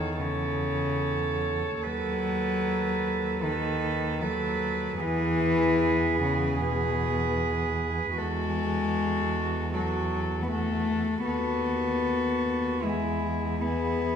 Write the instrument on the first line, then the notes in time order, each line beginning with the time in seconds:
cello
Already playing: E2 D#3 A4 C#5
0.19 C#3 A4
0.23 C#5
1.81 D#2 F#3 A4 B4
3.41 D#3 A4 B4
4.22 F#3 A4 B4
5.00 E2 E3 G#4 B4
6.22 C#3
6.60 B2 G#4 B4
8.16 E2 G#3 F#4 A4
9.74 F#3 F#4 A4
10.43 B3
10.48 A3 F#4 A4
11.25 D#2 B3 F#4 A4
12.83 E2 G#3 E4 G#4
13.61 B3 E4 G#4